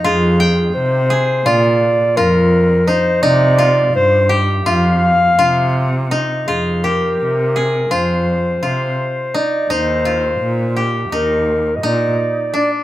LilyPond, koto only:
\new Staff \with { instrumentName = "Koto" } { \time 9/8 \key f \dorian \tempo 4. = 56 f'8 g''4 aes'8 f'4 f'4 ees'8 | ees'8 f'4 g'8 f'4 f'4 ees'8 | f'8 g'4 aes'8 f'4 f'4 ees'8 | ees'8 f'4 g'8 ees'4 ees'4 d'8 | }